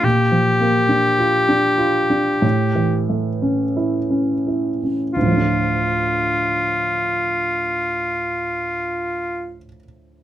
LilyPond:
<<
  \new Staff \with { instrumentName = "Oboe" } { \time 4/4 \key d \minor \tempo 4 = 47 g'2~ g'8 r4. | f'1 | }
  \new Staff \with { instrumentName = "Grand piano" } { \time 4/4 \key d \minor bes,16 f16 bes16 d'16 f'16 d'16 f'16 d'16 a,16 e16 a16 cis'16 e'16 cis'16 e'16 cis'16 | <d, a, f a d' f'>1 | }
>>